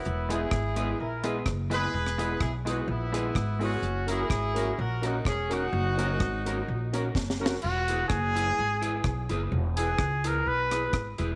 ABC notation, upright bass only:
X:1
M:4/4
L:1/8
Q:"Swing" 1/4=127
K:Elyd
V:1 name="Upright bass" clef=bass
E,,,2 G,,,2 A,,,2 F,,,2 | E,,,2 B,,,2 A,,,2 G,,,2 | F,,,2 G,,,2 A,,,2 E,,,2 | F,,,2 G,,,2 A,,,2 F,,,2 |
E,,,2 F,,,2 G,,,2 B,,, F,,, | E,,,2 C,,2 B,,,2 G,,, E,,, |]